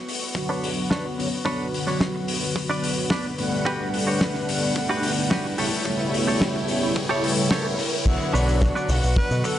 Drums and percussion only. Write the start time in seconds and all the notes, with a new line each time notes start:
0.08 open hi-hat
0.35 kick
0.64 open hi-hat
0.91 kick, snare
1.20 open hi-hat
1.46 kick
1.74 open hi-hat
1.87 snare
2.01 kick, snare
2.28 open hi-hat
2.56 kick
2.83 open hi-hat
3.10 kick, snare
3.38 open hi-hat
3.66 kick
3.94 open hi-hat
4.21 kick, snare
4.34 snare
4.49 open hi-hat
4.76 kick
5.03 open hi-hat
5.31 kick, snare
5.58 open hi-hat
5.85 kick
6.14 open hi-hat
6.27 snare
6.41 kick, snare
6.68 open hi-hat
6.96 kick
7.24 open hi-hat
7.51 kick, snare
7.79 open hi-hat
8.06 kick, crash, cabasa
8.21 cabasa
8.35 open hi-hat, cabasa
8.49 cabasa
8.61 kick, snare, cabasa
8.75 snare, cabasa
8.89 open hi-hat, cabasa
9.03 cabasa
9.16 kick, cabasa
9.31 cabasa
9.44 open hi-hat, cabasa